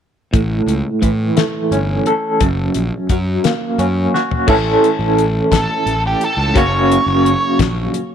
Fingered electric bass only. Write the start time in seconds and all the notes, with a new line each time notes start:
0.33 A1
0.66 C#2
1.02 A2
1.71 G1
2.40 F#1
2.75 A#1
3.09 F#2
3.78 F#2
4.48 A1
4.99 A1
5.51 A1
5.86 A1
6.37 C#2
6.55 F#1
7.06 F#1
7.59 A#1